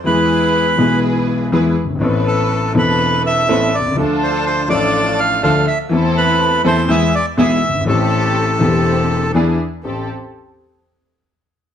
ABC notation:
X:1
M:4/4
L:1/16
Q:1/4=123
K:Am
V:1 name="Bandoneon"
B8 z8 | z2 A4 B4 e4 d2 | z2 c2 c2 d4 f2 f2 e2 | z2 B4 c2 e2 d2 e4 |
A12 z4 | z16 |]
V:2 name="String section"
[E^GB]6 [EGB]6 [EGB]2 z2 | [AB]6 [AB]6 [CAB]2 z2 | [DFA]6 [DFA]6 [DFA]2 z2 | [E,CEA]6 [E,CEA]2 [B,E^G]2 z2 [B,EG]2 z2 |
[CGA]6 [CGA]6 [DE^G]2 z2 | [CGA]2 z12 z2 |]
V:3 name="Grand piano" clef=bass
[E,,E,^G,B,^G]6 [B,,,B,,E,G,B,G]6 [E,,E,G,B,G]2 z/2 ^F,,,/2 =G,,,/2 ^G,,,/2 | [A,,,A,,E,B,CA]6 [E,,,E,,E,B,CA]6 [A,,,A,,E,B,CA]2 z/2 B,,,/2 C,,/2 ^C,,/2 | [D,,D,F,A,DA]6 [A,,,A,,F,A,DA]6 [D,,D,F,A,DA]2 z2 | [E,,E,A,CA]6 [E,,E,A,CA]2 [E,,E,^G,B,^G]2 z2 [B,,,B,,E,G,B,G]2 z/2 ^F,,,/2 =G,,,/2 ^G,,,/2 |
[A,,,A,,E,A,CG]6 [E,,,E,,E,A,CG]6 [E,,E,B,D^G]2 z2 | [A,,,CGA]2 z12 z2 |]